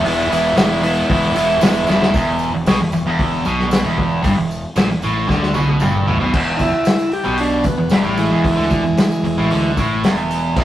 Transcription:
0.03 E1 E3 G#3 B3 E4, open hi-hat
0.08 tambourine
0.21 tambourine
0.29 E1 E3 G#3 B3 E4, open hi-hat, tambourine
0.48 tambourine
0.56 E1 E3 G#3 B3 E4, snare, open hi-hat, tambourine
0.71 tambourine
0.83 E3 G#3 B3 E4, open hi-hat, tambourine
0.97 tambourine
1.09 E1 E3 G#3 B3 E4, kick, open hi-hat, tambourine
1.22 tambourine
1.34 E1 E3 G#3 B3 E4, open hi-hat, tambourine
1.50 tambourine
1.60 E1 E3 G#3 B3, snare, open hi-hat, tambourine
1.64 E4
1.74 tambourine
1.86 E1 E3 G#3, tambourine
1.90 B3 E4, snare
2.01 snare, tambourine
2.14 E1 E2, kick, open hi-hat, tambourine
2.39 tambourine
2.53 E1 E2
2.65 B1 B2, snare, open hi-hat, tambourine
2.80 E1 E2, snare
2.92 E1 E2, tambourine
3.05 E1 E2
3.19 kick, open hi-hat, tambourine
3.45 B1 B2, tambourine
3.60 snare
3.71 snare, open hi-hat, tambourine
3.84 E1 E2
3.98 kick
4.24 G1 G2, kick, open hi-hat, tambourine
4.37 E1 E2
4.51 tambourine
4.76 A#1 A#2, snare, open hi-hat, tambourine
4.90 E1 E2, snare
5.02 A1 A2, tambourine
5.29 D2 D3, kick, snare, tambourine
5.43 snare
5.54 B1 B2, high tom, tambourine
5.68 high tom
5.80 G1 G2, mid tom, tambourine
5.95 mid tom
6.07 A1 A2, floor tom
6.20 B1 B2, floor tom
6.33 E1 E2, kick, crash
6.57 D#4, kick, open hi-hat, tambourine
6.61 E4
6.72 muted overdriven electric guitar stroke, muted fingered electric bass stroke, tambourine
6.85 snare, open hi-hat, tambourine
6.99 tambourine
7.12 G4, open hi-hat
7.24 B1 B2, tambourine
7.37 D4, open hi-hat, tambourine
7.64 E1 E2 B3, kick, open hi-hat, tambourine
7.78 E1 E2
7.89 E1 E2 G3, snare, open hi-hat, tambourine
8.03 A1 A2, tambourine
8.17 E3 G#3, open hi-hat, tambourine
8.30 E1 E2
8.44 kick, open hi-hat
8.56 D2 D3
8.70 kick, open hi-hat, tambourine
8.83 E1 E2, tambourine
8.95 muted fingered electric bass stroke, muted overdriven electric guitar stroke, snare, open hi-hat, tambourine
9.11 tambourine
9.22 E1 E2, open hi-hat
9.37 A1 A2, tambourine
9.50 D2 D3, open hi-hat, tambourine
9.77 A1 A2, kick, open hi-hat, tambourine
10.03 E1 E2, snare, open hi-hat, tambourine
10.16 tambourine
10.31 open hi-hat, tambourine
10.56 E1 E2, kick, crash

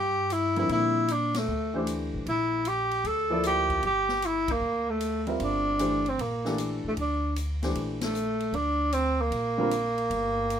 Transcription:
Already playing: G2 G4
0.30 E4, hi-hat pedal, ride
0.56 D3 F3 G3 C4 E4 A#4, ride
0.69 A#2 E4, ride
1.08 D4, hi-hat pedal, ride
1.34 A3, snare, ride
1.48 D2
1.74 E3 A3 D4 G4 C5
1.87 hi-hat pedal, ride
2.14 A1
2.26 A#1 E4, ride
2.65 G4, hi-hat pedal, ride
2.91 ride
3.04 D2 A4, ride
3.30 F3 A#3 E4 A4 D5
3.43 G4, hi-hat pedal, ride
3.70 kick, ride
3.83 G1 G4, ride
4.09 snare
4.22 E4, hi-hat pedal, ride
4.48 A#3, kick, ride
4.61 D2
4.90 A3
5.00 hi-hat pedal, ride
5.27 G3 C4 F4 A#4 E5, ride
5.40 G1 D4, ride
5.79 E3 A3 D4 G4 C5, hi-hat pedal, ride
6.06 C4, ride
6.18 A#1 A#3, ride
6.45 E3 A3 D4 G4 A4, snare
6.58 hi-hat pedal, ride
6.84 A1 A3
6.97 D2 D4, ride
7.36 hi-hat pedal, ride
7.62 E3 A3 D4 G4 C5, snare, ride
7.74 A#1, ride
8.01 A3, snare, ride
8.14 hi-hat pedal
8.40 ride
8.53 D2 D4, ride
8.92 C4, hi-hat pedal, ride
9.21 A#3
9.31 A#1, ride
9.58 D3 G3 C4 F4 A#4
9.71 hi-hat pedal, ride
9.98 ride
10.10 G1, ride
10.50 hi-hat pedal, ride

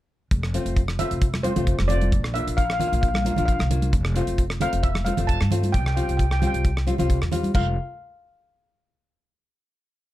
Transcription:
0.31 F1, kick, closed hi-hat
0.43 cross-stick
0.54 A3 C4 F4, closed hi-hat
0.65 F1, closed hi-hat
0.76 kick, closed hi-hat
0.88 cross-stick
0.99 A3 C4 F4 E5, closed hi-hat, low conga
1.11 F1, closed hi-hat
1.22 kick, closed hi-hat
1.34 cross-stick, high conga
1.43 A3 C4 F4 C5, closed hi-hat, high conga
1.56 F1 A3 C4 F4, closed hi-hat, low conga
1.67 kick, closed hi-hat
1.79 F1, cross-stick, high conga
1.88 A3 C4 F4 D5, closed hi-hat, low conga
2.01 closed hi-hat, high conga
2.12 A#1, kick, closed hi-hat
2.24 cross-stick
2.34 A#3 D4 F4 E5, closed hi-hat
2.47 A#1, closed hi-hat
2.57 F5, kick, closed hi-hat
2.65 F5
2.70 F5, cross-stick
2.79 A#3 D4 F4 F5, closed hi-hat, low conga
2.88 F5
2.92 A#1 F5, closed hi-hat
3.01 F5, kick, closed hi-hat
3.08 F5
3.14 F5, cross-stick, high conga
3.22 A#3 D4 F4 F5, closed hi-hat, high conga
3.31 F5
3.36 A#1 A#3 D4 F4 F5, closed hi-hat, low conga
3.45 F5, kick, closed hi-hat
3.52 F5
3.59 C2, cross-stick, high conga
3.71 A#3 D4 F4, closed hi-hat, low conga
3.82 closed hi-hat, high conga
3.93 F1, kick, closed hi-hat
4.05 cross-stick
4.16 A3 C4 F4, closed hi-hat
4.27 F1, closed hi-hat
4.38 kick, closed hi-hat
4.50 cross-stick
4.61 A3 C4 F4 F5, closed hi-hat, low conga
4.73 F1, closed hi-hat
4.83 E5, kick, closed hi-hat
4.95 cross-stick, high conga
5.05 A3 C4 F4 F5, closed hi-hat, high conga
5.17 F1 A3 C4 F4, closed hi-hat, low conga
5.27 A5, kick, closed hi-hat
5.40 G2, cross-stick, high conga
5.50 A3 C4 F4, closed hi-hat, low conga
5.63 closed hi-hat, high conga
5.72 C2 G5, kick, closed hi-hat
5.79 G5
5.86 G5, cross-stick
5.95 G3 C4 F4 G5, closed hi-hat
6.03 G5
6.08 C2 G5, closed hi-hat
6.17 G5, kick, closed hi-hat
6.24 G5
6.31 G5, cross-stick
6.40 G3 C4 F4 G5, closed hi-hat, high conga, low conga
6.47 G5
6.54 C2, closed hi-hat
6.65 kick, closed hi-hat
6.77 cross-stick
6.87 G3 C4 F4, closed hi-hat, high conga
6.98 C2 G3 C4 F4, closed hi-hat, low conga
7.10 kick, closed hi-hat
7.22 E2, cross-stick
7.31 G3 C4 F4, closed hi-hat, low conga
7.43 closed hi-hat, high conga
7.54 F1 A3 C4 F4 F5, kick, crash, high conga

